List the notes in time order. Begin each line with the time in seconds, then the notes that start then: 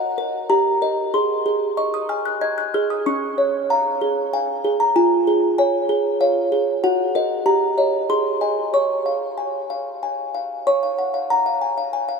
Already playing: F#4 D#5 F#5
0.18 A#4
0.50 G4 A#5
0.82 A#4 D#5
1.14 G#4 C6
1.46 G#4
1.77 D#5 C#6
1.94 D#6
2.09 G#5 F6
2.25 F#6
2.41 D#5 G#6
2.58 F#6
2.74 G#4 F6
2.90 D#6
3.06 C#4 C#6
3.38 C#5
3.70 F5 A#5
4.01 G#4
4.33 F5 G#5
4.64 G#4
4.80 A#5
4.96 F4 G#5
5.27 G#4
5.58 C#5 G#5
5.89 G#4
6.21 C#5 F5
6.52 G#4
6.84 F#4 F#5
7.15 A#4 D#5
7.46 G4 A#5
7.78 C#5 D#5
8.10 G#4 C6
8.41 D#5 G#5
8.74 C#5 C#6
9.06 F5
9.38 G#5
9.70 F5
10.03 G#5
10.35 F5
10.67 C#5 C#6
10.83 F5
10.99 F#5
11.14 F5
11.30 F#5 A#5
11.46 F5
11.61 G#5
11.78 F5
11.93 G#5
12.09 F5